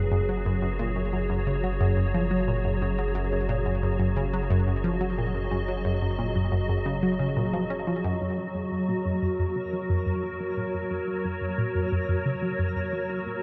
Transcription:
Already playing: analog synth bass F#1, ambient pad F#3 F#4 G#4 B4
0.05 ambient pad C#5
0.12 synth arpeggio sound F#2
0.29 synth arpeggio sound F#3
0.46 synth arpeggio sound F#2
0.62 synth arpeggio sound F#2
0.79 synth arpeggio sound A#2
0.96 synth arpeggio sound F#2
1.13 synth arpeggio sound F#2
1.30 synth arpeggio sound F#2
1.47 synth arpeggio sound C#3
1.64 synth arpeggio sound F#3
1.80 synth arpeggio sound F#2
1.97 synth arpeggio sound F#2
2.14 synth arpeggio sound F3
2.31 synth arpeggio sound F#3
2.48 synth arpeggio sound A#2
2.65 synth arpeggio sound F#2
2.82 synth arpeggio sound F#2
2.98 synth arpeggio sound F#3
3.15 synth arpeggio sound F#2
3.32 synth arpeggio sound F#2
3.49 synth arpeggio sound A#2
3.65 synth arpeggio sound F#2
3.83 synth arpeggio sound F#2
4.00 synth arpeggio sound F#2
4.16 synth arpeggio sound C#3
4.34 synth arpeggio sound F#3
4.50 synth arpeggio sound F#2
4.64 synth arpeggio sound F#2, ambient pad D#5
4.84 synth arpeggio sound F3
5.01 synth arpeggio sound F#3
5.18 synth arpeggio sound A#2
5.35 synth arpeggio sound F#2
5.51 synth arpeggio sound F#2
5.68 synth arpeggio sound F#3
5.85 synth arpeggio sound F#2
6.02 synth arpeggio sound F#2
6.18 synth arpeggio sound A#2
6.35 synth arpeggio sound F#2
6.52 synth arpeggio sound F#2
6.69 synth arpeggio sound F#2
6.86 synth arpeggio sound C#3
7.03 synth arpeggio sound F#3
7.19 synth arpeggio sound C#3
7.36 synth arpeggio sound A#2
7.53 synth arpeggio sound F3
7.70 synth arpeggio sound C#4
7.87 synth arpeggio sound F3
8.04 synth arpeggio sound F#2
8.21 synth arpeggio sound F#2, synth texture A#3 A#4
8.38 synth arpeggio sound F#3
8.55 synth arpeggio sound F#2
8.61 ambient pad A#4
8.71 synth arpeggio sound F#2
8.88 synth arpeggio sound A#2
9.05 synth arpeggio sound F#2
9.22 synth arpeggio sound F#2
9.39 synth arpeggio sound F#2
9.56 synth arpeggio sound C#3, ambient pad C#5
9.73 synth arpeggio sound F#3
9.90 synth arpeggio sound F#2
10.06 synth arpeggio sound F#2
10.23 synth arpeggio sound F3
10.40 synth arpeggio sound F#3
10.57 synth arpeggio sound A#2
10.74 synth arpeggio sound F#2
10.91 synth arpeggio sound F#2
11.08 synth arpeggio sound F#3
11.25 synth arpeggio sound F#2
11.41 synth arpeggio sound F#2
11.58 synth arpeggio sound A#2
11.75 synth arpeggio sound F#2
11.92 synth arpeggio sound F#2
12.09 synth arpeggio sound F#2
12.25 synth arpeggio sound C#3
12.42 synth arpeggio sound F#3
12.59 synth arpeggio sound F#2
12.76 synth arpeggio sound F#2
12.93 synth arpeggio sound F3
13.09 synth arpeggio sound F#3
13.26 synth arpeggio sound A#2

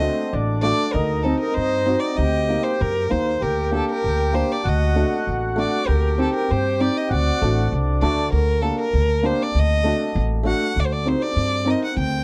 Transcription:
Already playing: accordion C4, violin D#5
0.00 hammered dulcimer A3 D4 F#4
0.32 upright bass A1, accordion D4
0.62 hammered dulcimer A3 D4 F#4, violin D5
0.92 upright bass D2, accordion D#4, violin A#4
1.23 hammered dulcimer C4 D#4 G4, violin A4
1.40 violin A#4
1.54 upright bass G2, violin C5
1.86 hammered dulcimer C4 D#4 F#4
2.00 violin D5
2.17 upright bass D2, accordion G4, violin D#5
2.49 hammered dulcimer A#3 D#4 G4
2.64 violin C5
2.81 upright bass F#2, violin A#4
3.10 upright bass D#2, hammered dulcimer A#3 D#4 G4, violin C5
3.41 upright bass D2, accordion G4, violin A#4
3.71 hammered dulcimer A#3 D4 G4, violin A4
3.90 violin A#4
4.04 upright bass D2
4.33 hammered dulcimer A#3 D4 G4, violin C5
4.52 violin D5
4.64 upright bass D2, accordion F#4
4.69 violin D#5
4.95 hammered dulcimer A3 D4 F#4
5.27 upright bass A1
5.56 hammered dulcimer A3 D4 F#4, violin D5
5.87 upright bass D2, accordion G4, violin A#4
6.18 hammered dulcimer C4 D#4 G4, violin A4
6.34 violin A#4
6.51 upright bass G2, violin C5
6.80 hammered dulcimer C4 D#4 G4, violin D5
6.98 violin D#5
7.09 upright bass D2, accordion F#4, violin D5
7.41 upright bass A1, hammered dulcimer A3 D4 F#4
7.71 upright bass C2, accordion D4
8.02 upright bass D2, hammered dulcimer A3 D4 F#4, violin D5
8.32 upright bass D2, violin A#4
8.62 hammered dulcimer A#3 D4 G4, violin A4
8.79 violin A#4
8.94 upright bass D2
9.23 hammered dulcimer A#3 D4 G4, violin C5
9.43 violin D5
9.55 upright bass D2
9.59 violin D#5
9.83 hammered dulcimer A3 D4 F#4
10.15 upright bass A1
10.43 hammered dulcimer A3 D4 F#4, violin F#5
10.76 upright bass D2, violin D5
10.86 violin C5
10.92 violin D5
11.06 hammered dulcimer C4 D#4 G4, violin C5
11.22 violin D5
11.36 upright bass G2
11.65 hammered dulcimer C4 D#4 A#4
11.71 violin D#5
11.85 violin F#5
11.97 upright bass D2, violin G5

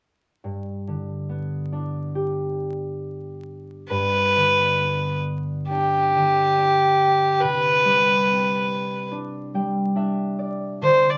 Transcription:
0.44 harp G2
0.88 harp D3
1.29 harp B3
1.72 harp D4
2.15 harp G4
3.88 harp G2, fiddle B4
4.36 harp D3
4.82 harp B3
5.69 harp D4, fiddle G4
6.15 harp D3
6.58 harp D4
7.40 harp C3, fiddle B4
7.85 harp G3
8.27 harp C4
9.11 harp D4
9.54 harp G3 G5
9.96 harp D4 E5
10.39 harp D5
10.82 harp D3, fiddle C5
11.10 fiddle D5

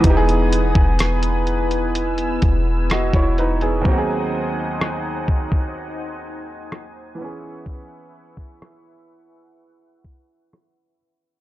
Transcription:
Already playing: analog synth pad B3 D#6
0.00 808-style bass E1, grand piano E3 B3, kick, closed hi-hat
0.05 grand piano D#4, analog synth pad B4 G#5
0.10 grand piano G4
0.17 grand piano G#4
0.29 closed hi-hat
0.53 closed hi-hat
0.75 808-style bass E1, kick
0.99 cross-stick, closed hi-hat
1.23 closed hi-hat
1.47 closed hi-hat
1.71 closed hi-hat
1.95 analog synth pad E6, closed hi-hat
2.18 closed hi-hat
2.42 808-style bass E1, kick, closed hi-hat
2.90 grand piano F#4 D#5, cross-stick, closed hi-hat
3.13 808-style bass E1, grand piano E4 C#5, kick, closed hi-hat
3.38 grand piano D#4 B4, closed hi-hat
3.61 grand piano B3 G#4, closed hi-hat
3.81 grand piano D#2 F#3, analog synth pad D#4 C5 F#5 G#5 D#6, kick
3.86 grand piano C4 D#4
3.91 grand piano F#4
3.98 grand piano G#4
4.81 cross-stick
5.28 kick
5.52 kick
6.72 cross-stick
7.15 grand piano E3 B3, analog synth pad B4 E5 C#6
7.21 grand piano C#4 G#4
7.66 kick
8.37 kick
8.62 cross-stick
9.09 analog synth pad F#5
10.04 kick
10.53 cross-stick

